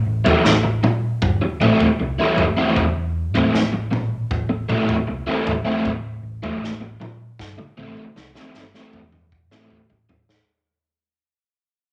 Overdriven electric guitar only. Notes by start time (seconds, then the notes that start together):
0.25 E3 A3 C4 E4
0.63 muted overdriven electric guitar stroke
0.83 muted overdriven electric guitar stroke
1.41 muted overdriven electric guitar stroke
1.60 E3 A3 C4 E4
2.00 muted overdriven electric guitar stroke
2.19 E3 A3 C4 E4
2.57 E3 A3 C4 E4
3.35 E3 A3 C4 E4
3.73 muted overdriven electric guitar stroke
3.91 muted overdriven electric guitar stroke
4.49 muted overdriven electric guitar stroke
4.69 E3 A3 C4 E4
5.07 muted overdriven electric guitar stroke
5.27 E3 A3 C4 E4
5.65 E3 A3 C4 E4
6.43 E3 A3 C4 E4
6.80 muted overdriven electric guitar stroke
7.00 muted overdriven electric guitar stroke
7.58 muted overdriven electric guitar stroke
7.77 E3 A3 C4 E4
8.16 muted overdriven electric guitar stroke
8.35 E3 A3 C4 E4
8.75 E3 A3 C4 E4
9.52 E3 A3 C4 E4
9.90 muted overdriven electric guitar stroke
10.09 muted overdriven electric guitar stroke